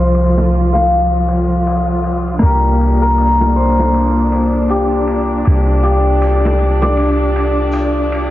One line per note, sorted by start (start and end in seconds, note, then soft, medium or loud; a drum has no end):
0.00 2.39 C2 medium
0.00 2.43 F3 medium
0.00 2.36 C4 medium
0.00 2.37 D4 medium
0.00 2.39 F4 medium
0.00 2.43 F4 medium
0.00 2.40 G#4 medium
0.00 2.41 C5 medium
0.13 ride medium
0.13 shaker medium
0.38 snare soft
0.53 ride medium
0.73 2.95 F5 medium
0.73 snare soft
0.90 ride medium
1.28 ride medium
1.65 ride medium
1.65 shaker medium
2.04 ride medium
2.39 5.42 C2 medium
2.39 8.30 A#3 medium
2.39 8.30 D4 medium
2.39 3.01 A#4 medium
2.39 ride medium
2.44 8.30 F4 medium
2.44 8.30 G4 medium
2.81 ride medium
3.02 5.84 A#4 medium
3.18 ride medium
3.18 shaker medium
3.41 snare soft
3.56 6.20 C5 medium
3.56 ride medium
3.79 snare soft
3.94 ride medium
4.32 ride medium
4.69 5.83 G4 medium
4.69 ride medium
4.69 shaker medium
5.07 ride medium
5.45 8.30 C2 medium
5.45 ride medium
5.83 8.30 G4 medium
5.83 ride medium
6.22 ride medium
6.22 shaker medium
6.45 snare soft
6.59 ride medium
6.82 8.30 D5 medium
6.82 snare soft
6.97 ride medium
7.36 ride medium
7.72 ride medium
7.72 shaker medium
8.12 ride medium